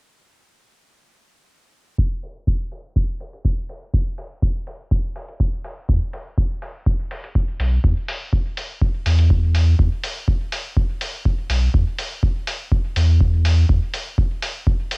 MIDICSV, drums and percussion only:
0, 0, Header, 1, 2, 480
1, 0, Start_track
1, 0, Tempo, 487805
1, 1954, Time_signature, 4, 2, 24, 8
1, 14735, End_track
2, 0, Start_track
2, 0, Title_t, "Drums"
2, 1954, Note_on_c, 9, 36, 112
2, 2052, Note_off_c, 9, 36, 0
2, 2194, Note_on_c, 9, 46, 78
2, 2292, Note_off_c, 9, 46, 0
2, 2434, Note_on_c, 9, 36, 100
2, 2532, Note_off_c, 9, 36, 0
2, 2674, Note_on_c, 9, 46, 69
2, 2772, Note_off_c, 9, 46, 0
2, 2914, Note_on_c, 9, 36, 112
2, 3013, Note_off_c, 9, 36, 0
2, 3154, Note_on_c, 9, 46, 77
2, 3253, Note_off_c, 9, 46, 0
2, 3280, Note_on_c, 9, 46, 31
2, 3378, Note_off_c, 9, 46, 0
2, 3394, Note_on_c, 9, 36, 99
2, 3493, Note_off_c, 9, 36, 0
2, 3634, Note_on_c, 9, 46, 67
2, 3733, Note_off_c, 9, 46, 0
2, 3874, Note_on_c, 9, 36, 111
2, 3973, Note_off_c, 9, 36, 0
2, 4114, Note_on_c, 9, 46, 79
2, 4212, Note_off_c, 9, 46, 0
2, 4354, Note_on_c, 9, 36, 105
2, 4453, Note_off_c, 9, 36, 0
2, 4594, Note_on_c, 9, 46, 75
2, 4693, Note_off_c, 9, 46, 0
2, 4834, Note_on_c, 9, 36, 111
2, 4932, Note_off_c, 9, 36, 0
2, 5075, Note_on_c, 9, 46, 80
2, 5173, Note_off_c, 9, 46, 0
2, 5201, Note_on_c, 9, 46, 33
2, 5299, Note_off_c, 9, 46, 0
2, 5314, Note_on_c, 9, 36, 99
2, 5413, Note_off_c, 9, 36, 0
2, 5554, Note_on_c, 9, 46, 72
2, 5653, Note_off_c, 9, 46, 0
2, 5794, Note_on_c, 9, 36, 116
2, 5892, Note_off_c, 9, 36, 0
2, 6034, Note_on_c, 9, 46, 78
2, 6132, Note_off_c, 9, 46, 0
2, 6274, Note_on_c, 9, 36, 106
2, 6373, Note_off_c, 9, 36, 0
2, 6515, Note_on_c, 9, 46, 72
2, 6613, Note_off_c, 9, 46, 0
2, 6754, Note_on_c, 9, 36, 114
2, 6853, Note_off_c, 9, 36, 0
2, 6995, Note_on_c, 9, 46, 78
2, 7093, Note_off_c, 9, 46, 0
2, 7121, Note_on_c, 9, 46, 33
2, 7220, Note_off_c, 9, 46, 0
2, 7234, Note_on_c, 9, 36, 107
2, 7333, Note_off_c, 9, 36, 0
2, 7475, Note_on_c, 9, 46, 75
2, 7573, Note_off_c, 9, 46, 0
2, 7714, Note_on_c, 9, 36, 117
2, 7813, Note_off_c, 9, 36, 0
2, 7954, Note_on_c, 9, 46, 86
2, 8053, Note_off_c, 9, 46, 0
2, 8194, Note_on_c, 9, 36, 107
2, 8292, Note_off_c, 9, 36, 0
2, 8434, Note_on_c, 9, 46, 70
2, 8532, Note_off_c, 9, 46, 0
2, 8674, Note_on_c, 9, 36, 118
2, 8772, Note_off_c, 9, 36, 0
2, 8914, Note_on_c, 9, 46, 81
2, 9013, Note_off_c, 9, 46, 0
2, 9040, Note_on_c, 9, 46, 32
2, 9139, Note_off_c, 9, 46, 0
2, 9154, Note_on_c, 9, 36, 103
2, 9252, Note_off_c, 9, 36, 0
2, 9393, Note_on_c, 9, 46, 73
2, 9492, Note_off_c, 9, 46, 0
2, 9634, Note_on_c, 9, 36, 112
2, 9732, Note_off_c, 9, 36, 0
2, 9874, Note_on_c, 9, 46, 81
2, 9973, Note_off_c, 9, 46, 0
2, 10114, Note_on_c, 9, 36, 103
2, 10212, Note_off_c, 9, 36, 0
2, 10354, Note_on_c, 9, 46, 82
2, 10453, Note_off_c, 9, 46, 0
2, 10594, Note_on_c, 9, 36, 110
2, 10693, Note_off_c, 9, 36, 0
2, 10834, Note_on_c, 9, 46, 79
2, 10932, Note_off_c, 9, 46, 0
2, 11074, Note_on_c, 9, 36, 99
2, 11173, Note_off_c, 9, 36, 0
2, 11314, Note_on_c, 9, 46, 83
2, 11413, Note_off_c, 9, 46, 0
2, 11554, Note_on_c, 9, 36, 120
2, 11653, Note_off_c, 9, 36, 0
2, 11794, Note_on_c, 9, 46, 81
2, 11892, Note_off_c, 9, 46, 0
2, 12034, Note_on_c, 9, 36, 105
2, 12133, Note_off_c, 9, 36, 0
2, 12274, Note_on_c, 9, 46, 89
2, 12373, Note_off_c, 9, 46, 0
2, 12514, Note_on_c, 9, 36, 122
2, 12613, Note_off_c, 9, 36, 0
2, 12755, Note_on_c, 9, 46, 83
2, 12853, Note_off_c, 9, 46, 0
2, 12994, Note_on_c, 9, 36, 106
2, 13093, Note_off_c, 9, 36, 0
2, 13235, Note_on_c, 9, 46, 84
2, 13333, Note_off_c, 9, 46, 0
2, 13474, Note_on_c, 9, 36, 119
2, 13573, Note_off_c, 9, 36, 0
2, 13714, Note_on_c, 9, 46, 83
2, 13812, Note_off_c, 9, 46, 0
2, 13954, Note_on_c, 9, 36, 112
2, 14053, Note_off_c, 9, 36, 0
2, 14194, Note_on_c, 9, 46, 89
2, 14292, Note_off_c, 9, 46, 0
2, 14434, Note_on_c, 9, 36, 120
2, 14533, Note_off_c, 9, 36, 0
2, 14674, Note_on_c, 9, 46, 83
2, 14735, Note_off_c, 9, 46, 0
2, 14735, End_track
0, 0, End_of_file